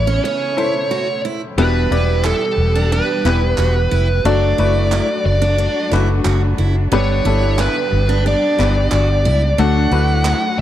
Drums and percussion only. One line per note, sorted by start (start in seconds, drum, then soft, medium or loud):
2.24 clap medium
3.27 clap medium
3.58 clap medium
4.92 clap medium
5.94 clap medium
6.25 clap medium
7.59 clap medium
8.61 clap medium
8.92 clap medium
10.25 clap medium